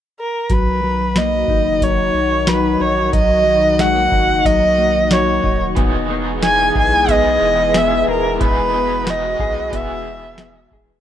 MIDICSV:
0, 0, Header, 1, 7, 480
1, 0, Start_track
1, 0, Key_signature, 5, "major"
1, 0, Tempo, 659341
1, 362, Time_signature, 4, 2, 24, 8
1, 8009, End_track
2, 0, Start_track
2, 0, Title_t, "Erhu"
2, 0, Program_c, 0, 110
2, 141, Note_on_c, 0, 70, 65
2, 378, Note_on_c, 0, 71, 72
2, 389, Note_off_c, 0, 70, 0
2, 855, Note_on_c, 0, 75, 73
2, 866, Note_off_c, 0, 71, 0
2, 1330, Note_on_c, 0, 73, 81
2, 1341, Note_off_c, 0, 75, 0
2, 1805, Note_on_c, 0, 71, 70
2, 1816, Note_off_c, 0, 73, 0
2, 2046, Note_on_c, 0, 73, 75
2, 2057, Note_off_c, 0, 71, 0
2, 2284, Note_off_c, 0, 73, 0
2, 2292, Note_on_c, 0, 75, 88
2, 2768, Note_on_c, 0, 78, 84
2, 2779, Note_off_c, 0, 75, 0
2, 3247, Note_on_c, 0, 75, 90
2, 3258, Note_off_c, 0, 78, 0
2, 3731, Note_on_c, 0, 73, 75
2, 3742, Note_off_c, 0, 75, 0
2, 4086, Note_off_c, 0, 73, 0
2, 4690, Note_on_c, 0, 80, 89
2, 4909, Note_off_c, 0, 80, 0
2, 4935, Note_on_c, 0, 80, 91
2, 5174, Note_on_c, 0, 75, 88
2, 5185, Note_off_c, 0, 80, 0
2, 5658, Note_on_c, 0, 76, 78
2, 5669, Note_off_c, 0, 75, 0
2, 5890, Note_off_c, 0, 76, 0
2, 5901, Note_on_c, 0, 70, 76
2, 6115, Note_off_c, 0, 70, 0
2, 6140, Note_on_c, 0, 71, 83
2, 6619, Note_on_c, 0, 75, 74
2, 6630, Note_off_c, 0, 71, 0
2, 7098, Note_on_c, 0, 76, 78
2, 7109, Note_off_c, 0, 75, 0
2, 7810, Note_off_c, 0, 76, 0
2, 8009, End_track
3, 0, Start_track
3, 0, Title_t, "Analog synth pad"
3, 0, Program_c, 1, 89
3, 359, Note_on_c, 1, 51, 73
3, 361, Note_on_c, 1, 66, 82
3, 362, Note_on_c, 1, 63, 66
3, 364, Note_on_c, 1, 54, 64
3, 4171, Note_off_c, 1, 51, 0
3, 4173, Note_off_c, 1, 63, 0
3, 4173, Note_off_c, 1, 66, 0
3, 4174, Note_off_c, 1, 54, 0
3, 4200, Note_on_c, 1, 56, 64
3, 4201, Note_on_c, 1, 59, 66
3, 4202, Note_on_c, 1, 68, 78
3, 4204, Note_on_c, 1, 52, 72
3, 6103, Note_off_c, 1, 68, 0
3, 6111, Note_on_c, 1, 66, 81
3, 8009, Note_off_c, 1, 52, 0
3, 8009, Note_off_c, 1, 56, 0
3, 8009, Note_off_c, 1, 59, 0
3, 8009, Note_off_c, 1, 66, 0
3, 8009, End_track
4, 0, Start_track
4, 0, Title_t, "Clean electric guitar"
4, 0, Program_c, 2, 27
4, 368, Note_on_c, 2, 54, 68
4, 601, Note_off_c, 2, 54, 0
4, 609, Note_on_c, 2, 54, 53
4, 850, Note_on_c, 2, 58, 53
4, 1090, Note_on_c, 2, 63, 56
4, 1322, Note_off_c, 2, 54, 0
4, 1330, Note_on_c, 2, 54, 53
4, 1566, Note_off_c, 2, 58, 0
4, 1795, Note_off_c, 2, 54, 0
4, 1803, Note_on_c, 2, 54, 53
4, 2037, Note_off_c, 2, 63, 0
4, 2040, Note_on_c, 2, 63, 58
4, 2271, Note_off_c, 2, 54, 0
4, 2279, Note_on_c, 2, 54, 69
4, 2513, Note_off_c, 2, 54, 0
4, 2522, Note_on_c, 2, 54, 54
4, 2766, Note_on_c, 2, 56, 53
4, 2882, Note_off_c, 2, 56, 0
4, 2882, Note_on_c, 2, 58, 42
4, 2998, Note_off_c, 2, 63, 0
4, 3001, Note_on_c, 2, 63, 61
4, 3236, Note_off_c, 2, 54, 0
4, 3244, Note_on_c, 2, 54, 50
4, 3470, Note_off_c, 2, 58, 0
4, 3478, Note_on_c, 2, 58, 50
4, 3709, Note_off_c, 2, 54, 0
4, 3718, Note_on_c, 2, 54, 53
4, 3954, Note_off_c, 2, 63, 0
4, 3957, Note_on_c, 2, 63, 57
4, 4196, Note_off_c, 2, 58, 0
4, 4199, Note_on_c, 2, 59, 71
4, 4248, Note_off_c, 2, 54, 0
4, 4442, Note_off_c, 2, 59, 0
4, 4444, Note_on_c, 2, 59, 55
4, 4676, Note_off_c, 2, 63, 0
4, 4679, Note_on_c, 2, 63, 57
4, 4919, Note_on_c, 2, 68, 58
4, 5156, Note_off_c, 2, 59, 0
4, 5159, Note_on_c, 2, 59, 52
4, 5642, Note_off_c, 2, 59, 0
4, 5645, Note_on_c, 2, 59, 52
4, 5880, Note_off_c, 2, 68, 0
4, 5883, Note_on_c, 2, 68, 59
4, 6118, Note_off_c, 2, 59, 0
4, 6121, Note_on_c, 2, 59, 76
4, 6359, Note_off_c, 2, 59, 0
4, 6362, Note_on_c, 2, 59, 53
4, 6843, Note_off_c, 2, 68, 0
4, 6846, Note_on_c, 2, 68, 63
4, 7079, Note_off_c, 2, 59, 0
4, 7082, Note_on_c, 2, 59, 55
4, 7227, Note_off_c, 2, 63, 0
4, 7562, Note_off_c, 2, 59, 0
4, 7564, Note_on_c, 2, 59, 52
4, 7808, Note_off_c, 2, 68, 0
4, 7811, Note_on_c, 2, 68, 56
4, 8009, Note_off_c, 2, 59, 0
4, 8009, Note_off_c, 2, 68, 0
4, 8009, End_track
5, 0, Start_track
5, 0, Title_t, "Overdriven electric guitar"
5, 0, Program_c, 3, 29
5, 4189, Note_on_c, 3, 52, 82
5, 4196, Note_on_c, 3, 56, 82
5, 4202, Note_on_c, 3, 59, 89
5, 4209, Note_on_c, 3, 63, 85
5, 4217, Note_on_c, 3, 68, 89
5, 4421, Note_off_c, 3, 68, 0
5, 4429, Note_on_c, 3, 68, 46
5, 4435, Note_off_c, 3, 52, 0
5, 4439, Note_off_c, 3, 56, 0
5, 4442, Note_off_c, 3, 59, 0
5, 4446, Note_off_c, 3, 63, 0
5, 4453, Note_on_c, 3, 63, 44
5, 4472, Note_on_c, 3, 59, 37
5, 5138, Note_on_c, 3, 52, 63
5, 5160, Note_on_c, 3, 56, 64
5, 5171, Note_off_c, 3, 59, 0
5, 5173, Note_on_c, 3, 59, 72
5, 5198, Note_off_c, 3, 68, 0
5, 5201, Note_on_c, 3, 68, 77
5, 6105, Note_off_c, 3, 52, 0
5, 6108, Note_on_c, 3, 52, 67
5, 6116, Note_off_c, 3, 56, 0
5, 6119, Note_on_c, 3, 56, 73
5, 6123, Note_off_c, 3, 59, 0
5, 6126, Note_on_c, 3, 59, 71
5, 6130, Note_off_c, 3, 63, 0
5, 6133, Note_off_c, 3, 68, 0
5, 6133, Note_on_c, 3, 63, 80
5, 6136, Note_on_c, 3, 68, 85
5, 6343, Note_off_c, 3, 68, 0
5, 6352, Note_on_c, 3, 68, 40
5, 6355, Note_off_c, 3, 52, 0
5, 6361, Note_off_c, 3, 56, 0
5, 6364, Note_off_c, 3, 59, 0
5, 6365, Note_off_c, 3, 63, 0
5, 6374, Note_on_c, 3, 63, 38
5, 6391, Note_on_c, 3, 59, 36
5, 6588, Note_on_c, 3, 56, 52
5, 6597, Note_off_c, 3, 68, 0
5, 6598, Note_off_c, 3, 59, 0
5, 6606, Note_off_c, 3, 63, 0
5, 6606, Note_on_c, 3, 59, 48
5, 6615, Note_on_c, 3, 63, 50
5, 6629, Note_on_c, 3, 68, 54
5, 7064, Note_on_c, 3, 52, 66
5, 7080, Note_off_c, 3, 56, 0
5, 7083, Note_on_c, 3, 56, 64
5, 7095, Note_off_c, 3, 59, 0
5, 7098, Note_on_c, 3, 59, 72
5, 7124, Note_off_c, 3, 68, 0
5, 7127, Note_on_c, 3, 68, 70
5, 8009, Note_off_c, 3, 52, 0
5, 8009, Note_off_c, 3, 56, 0
5, 8009, Note_off_c, 3, 59, 0
5, 8009, Note_off_c, 3, 63, 0
5, 8009, Note_off_c, 3, 68, 0
5, 8009, End_track
6, 0, Start_track
6, 0, Title_t, "Sub bass"
6, 0, Program_c, 4, 38
6, 362, Note_on_c, 4, 35, 87
6, 1053, Note_off_c, 4, 35, 0
6, 1078, Note_on_c, 4, 30, 87
6, 1536, Note_off_c, 4, 30, 0
6, 1559, Note_on_c, 4, 35, 99
6, 2016, Note_off_c, 4, 35, 0
6, 2043, Note_on_c, 4, 34, 82
6, 2270, Note_off_c, 4, 34, 0
6, 2281, Note_on_c, 4, 35, 97
6, 2972, Note_off_c, 4, 35, 0
6, 3000, Note_on_c, 4, 30, 83
6, 3229, Note_off_c, 4, 30, 0
6, 3239, Note_on_c, 4, 35, 89
6, 3931, Note_off_c, 4, 35, 0
6, 3958, Note_on_c, 4, 27, 88
6, 4188, Note_off_c, 4, 27, 0
6, 4201, Note_on_c, 4, 28, 91
6, 4892, Note_off_c, 4, 28, 0
6, 4917, Note_on_c, 4, 35, 81
6, 5375, Note_off_c, 4, 35, 0
6, 5398, Note_on_c, 4, 28, 103
6, 5856, Note_off_c, 4, 28, 0
6, 5878, Note_on_c, 4, 27, 79
6, 6108, Note_off_c, 4, 27, 0
6, 6120, Note_on_c, 4, 28, 88
6, 6812, Note_off_c, 4, 28, 0
6, 6837, Note_on_c, 4, 35, 85
6, 7068, Note_off_c, 4, 35, 0
6, 7079, Note_on_c, 4, 28, 94
6, 7772, Note_off_c, 4, 28, 0
6, 7799, Note_on_c, 4, 27, 73
6, 8009, Note_off_c, 4, 27, 0
6, 8009, End_track
7, 0, Start_track
7, 0, Title_t, "Drums"
7, 361, Note_on_c, 9, 42, 59
7, 362, Note_on_c, 9, 36, 99
7, 434, Note_off_c, 9, 42, 0
7, 435, Note_off_c, 9, 36, 0
7, 842, Note_on_c, 9, 38, 95
7, 846, Note_on_c, 9, 42, 60
7, 915, Note_off_c, 9, 38, 0
7, 918, Note_off_c, 9, 42, 0
7, 1079, Note_on_c, 9, 36, 76
7, 1152, Note_off_c, 9, 36, 0
7, 1321, Note_on_c, 9, 36, 72
7, 1326, Note_on_c, 9, 42, 66
7, 1393, Note_off_c, 9, 36, 0
7, 1399, Note_off_c, 9, 42, 0
7, 1799, Note_on_c, 9, 38, 103
7, 1802, Note_on_c, 9, 42, 63
7, 1871, Note_off_c, 9, 38, 0
7, 1875, Note_off_c, 9, 42, 0
7, 2281, Note_on_c, 9, 36, 104
7, 2281, Note_on_c, 9, 42, 63
7, 2353, Note_off_c, 9, 36, 0
7, 2354, Note_off_c, 9, 42, 0
7, 2761, Note_on_c, 9, 38, 95
7, 2764, Note_on_c, 9, 42, 61
7, 2834, Note_off_c, 9, 38, 0
7, 2837, Note_off_c, 9, 42, 0
7, 2998, Note_on_c, 9, 36, 81
7, 3071, Note_off_c, 9, 36, 0
7, 3239, Note_on_c, 9, 36, 71
7, 3246, Note_on_c, 9, 42, 63
7, 3312, Note_off_c, 9, 36, 0
7, 3319, Note_off_c, 9, 42, 0
7, 3718, Note_on_c, 9, 38, 95
7, 3721, Note_on_c, 9, 42, 60
7, 3791, Note_off_c, 9, 38, 0
7, 3794, Note_off_c, 9, 42, 0
7, 3959, Note_on_c, 9, 36, 74
7, 4032, Note_off_c, 9, 36, 0
7, 4197, Note_on_c, 9, 42, 61
7, 4199, Note_on_c, 9, 36, 103
7, 4270, Note_off_c, 9, 42, 0
7, 4272, Note_off_c, 9, 36, 0
7, 4678, Note_on_c, 9, 38, 100
7, 4681, Note_on_c, 9, 42, 64
7, 4750, Note_off_c, 9, 38, 0
7, 4754, Note_off_c, 9, 42, 0
7, 4917, Note_on_c, 9, 36, 77
7, 4989, Note_off_c, 9, 36, 0
7, 5157, Note_on_c, 9, 36, 69
7, 5159, Note_on_c, 9, 42, 68
7, 5230, Note_off_c, 9, 36, 0
7, 5232, Note_off_c, 9, 42, 0
7, 5637, Note_on_c, 9, 38, 99
7, 5640, Note_on_c, 9, 42, 58
7, 5710, Note_off_c, 9, 38, 0
7, 5713, Note_off_c, 9, 42, 0
7, 6120, Note_on_c, 9, 36, 102
7, 6121, Note_on_c, 9, 42, 59
7, 6193, Note_off_c, 9, 36, 0
7, 6194, Note_off_c, 9, 42, 0
7, 6601, Note_on_c, 9, 38, 97
7, 6604, Note_on_c, 9, 42, 60
7, 6674, Note_off_c, 9, 38, 0
7, 6677, Note_off_c, 9, 42, 0
7, 6838, Note_on_c, 9, 36, 79
7, 6911, Note_off_c, 9, 36, 0
7, 7079, Note_on_c, 9, 36, 69
7, 7083, Note_on_c, 9, 42, 68
7, 7152, Note_off_c, 9, 36, 0
7, 7156, Note_off_c, 9, 42, 0
7, 7556, Note_on_c, 9, 38, 100
7, 7559, Note_on_c, 9, 42, 59
7, 7629, Note_off_c, 9, 38, 0
7, 7632, Note_off_c, 9, 42, 0
7, 7800, Note_on_c, 9, 36, 80
7, 7873, Note_off_c, 9, 36, 0
7, 8009, End_track
0, 0, End_of_file